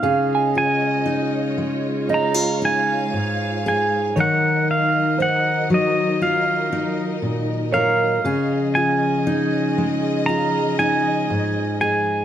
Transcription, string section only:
\new Staff \with { instrumentName = "String section" } { \time 4/4 \key des \major \tempo 4 = 59 << { ees''2 f''2 | ees''1 | ees''1 | } \\ { <aes f' des''>1 | <ges ees' bes'>1 | <f des' aes'>1 | } >> }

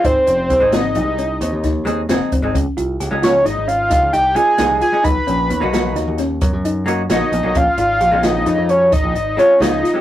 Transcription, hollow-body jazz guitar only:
\new Staff \with { instrumentName = "Hollow-body jazz guitar" } { \time 11/8 \key des \major \tempo 4 = 132 r4 r16 <aes c' ees' aes'>4~ <aes c' ees' aes'>16 r4. <aes c' ees' aes'>16 r16 <aes c' ees' aes'>8 r16 <aes c' ees' aes'>16 | r4 r16 <aes des' ees' aes'>4~ <aes des' ees' aes'>16 r4. <aes des' ees' aes'>16 r16 <aes des' ees' aes'>8 r16 <aes des' ees' aes'>16 | r4 r16 <bes des' ees' ges'>4~ <bes des' ees' ges'>16 r4. <bes des' ees' ges'>16 r16 <bes des' ees' ges'>8 r16 <bes des' ees' ges'>16 | r4 r16 <aes c' des' f'>4~ <aes c' des' f'>16 r4. <aes c' des' f'>16 r16 <aes c' des' f'>8 r16 <aes c' des' g'>16 | }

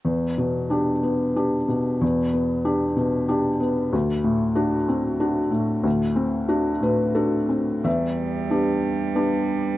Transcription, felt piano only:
\new Staff \with { instrumentName = "Felt piano" } { \time 3/4 \key e \minor \tempo 4 = 92 << { r2. | r2. | r2. | r4. b'8 a'4 |
e''2. | } \\ { e,8 b,8 <d' g'>8 b8 <d' g'>8 b,8 | e,8 b8 <d' g'>8 b,8 <d' g'>8 b8 | d,8 a,8 <d' fis'>8 c'8 <d' fis'>8 a,8 | d,8 c'8 <d' fis'>8 a,8 <d' fis'>8 c'8 |
e,4 <b d' g'>4 <b d' g'>4 | } >> }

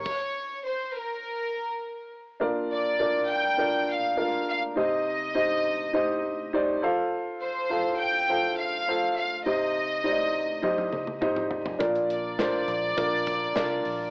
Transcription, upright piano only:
<<
  \new Staff \with { instrumentName = "Upright piano" } { \time 4/4 \key ees \dorian \tempo 4 = 102 r1 | \key bes \major <d' f' bes' d''>4 <d' f' bes' d''>4 <d' f' bes' d''>4 <d' f' bes' f''>4 | <ees' g' c'' ees''>4 <ees' g' c'' ees''>4 <ees' g' c'' ees''>4 <ees' g' c'' d''>8 <f' a' c'' f''>8~ | <f' a' c'' f''>8 r8 <f' a' c'' f''>4 <f' a' c'' f''>4 <f' a' c'' f''>4 |
<ees' g' c'' ees''>4 <ees' g' c'' d'' ees''>4 <ees' g' c'' ees''>4 <ees' g' c'' ees''>4 | <d' f' bes' d''>4 <d' f' bes' c''>4 <d' f' bes' d''>4 <d' f' bes' d''>4 | }
  \new Staff \with { instrumentName = "Upright piano" } { \clef bass \time 4/4 \key ees \dorian r1 | \key bes \major bes,4. r2 r8 | c4. r2 r8 | r1 |
c4. r2 r8 | bes,4. r2 r8 | }
>>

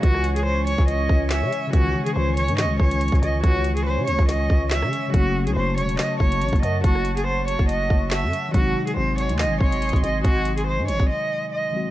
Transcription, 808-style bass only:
\new Staff \with { instrumentName = "808-style bass" } { \clef bass \time 4/4 \key cis \minor \tempo 4 = 141 cis,4.~ cis,16 cis,8. cis,8. cis16 r8 | cis,8 r8 cis,8. gis,16. cis,16. cis,8. cis,16 cis,8 | cis,4~ cis,16 cis16 cis,16 cis,8. cis,8. cis16 r8 | fis,,8. cis,16 fis,,8 e,,8 r8 fis,,8 a,,16 fis,,16 fis,8 |
fis,,4.~ fis,,16 fis,,8. fis,,8. fis,16 r8 | gis,,8 r8 gis,,8. dis,16. gis,,16. gis,,8. gis,,16 gis,,8 | gis,,4~ gis,,16 gis,16 gis,,16 gis,,16 r2 | }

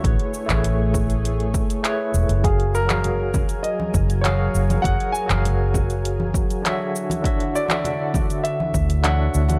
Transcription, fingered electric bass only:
\new Staff \with { instrumentName = "Fingered electric bass" } { \clef bass \time 4/4 \key fis \major \tempo 4 = 100 a,,16 r8 a,,2 r8. e,,16 fis,,16~ | fis,,4.~ fis,,16 r8. fis,,4 fis,,16 r16 | fis,,16 r8 fis,,2 r4 r16 | r2 r8 d,4 d,16 r16 | }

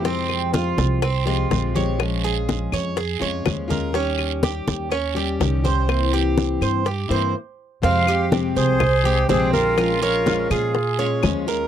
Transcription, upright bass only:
\new Staff \with { instrumentName = "Upright bass" } { \clef bass \time 4/4 \key f \minor \tempo 4 = 123 f,4. c,4. bes,,4~ | bes,,4. f,4 f,8 ees,4~ | ees,4. ees,4. c,4~ | c,4. g,4 g,8 r4 |
f,4. c,4. bes,,4~ | bes,,4. bes,4. ees,4 | }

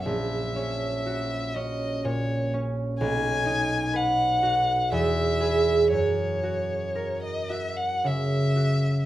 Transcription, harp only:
\new Staff \with { instrumentName = "Harp" } { \time 3/4 \key fis \mixolydian \tempo 4 = 60 <ais,, fis'>8 cis'8 fis'8 cis'8 ais,8 cis'8 | b,,8 dis'8 b'8 fis'8 e,8 <gis' b'>8 | fis,8 fis'8 ais'8 fis'8 cis8 fis'8 | }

